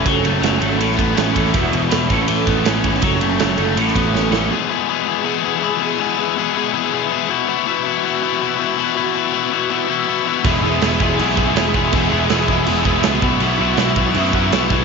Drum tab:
CC |----------------|----------------|----------------|----------------|
RD |x-x-x-x-x-x-x-x-|x-x-x-x-x-x-x-x-|x-x-x-x-x-x-----|----------------|
SD |----o----o--o--o|----o-------o--o|----o----o--o-o-|----------------|
BD |o---------o---o-|o-----o---o---o-|o---------o-----|----------------|

CC |----------------|----------------|----------------|x---x---x---x---|
RD |----------------|----------------|----------------|----------------|
SD |----------------|----------------|----------------|----o----o--o---|
BD |----------------|----------------|----------------|o-----o---o---o-|

CC |x---x---x---x---|x---x---x---x---|
RD |----------------|----------------|
SD |----o-------o---|----o----o--o---|
BD |o-----o---o---o-|------o---o---o-|